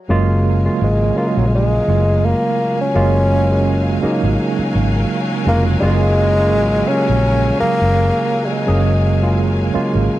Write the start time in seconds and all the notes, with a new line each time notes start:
0.07 F#1 C#3 F#3 G#3 A#3 F4 A#4 F5 G#5
0.64 C#3 F#3 G#3 A#3 F4
0.82 G#1 G#3
1.16 C#3 F#3 G#3 A#3 F4
1.28 G#3
1.37 A#1 F#3
1.47 G#3
1.55 G#3
1.88 F#1 C#3 F#3 G#3 A3 F4
1.95 A#3
2.26 A#3
2.81 C#4
2.94 F#1 C#3 F#3 G#3 A#3 F4
3.50 C#3 F#3 G#3 A#3 C#4
4.02 C#3 F#3 G#3 A#3 D#4, muted fingered electric bass stroke
4.23 G#1
4.59 muted fingered electric bass stroke
4.75 G#1
5.46 F1 C#3 F#3 G#3 A#3 F4
5.81 F#1 C#3 F#3 G#3 A#3 F4
6.38 C#3 F#3 G#3 A#3 F4
6.54 G#1
6.88 C#3 F#3 G#3 A#3 C#4 G4
6.97 G#4
7.09 A#1
7.60 C#3 F#3 G#3 A#3 G#4, muted fingered electric bass stroke
7.82 F#1
8.46 G3
8.51 G#3
8.67 F#1 C#3 F#3 G#3 A#3 G#4
9.22 C#3 F#3 G#3 A#3 F4
9.73 C#3 F#3 G#3 A#3 F4, muted fingered electric bass stroke
9.95 G#1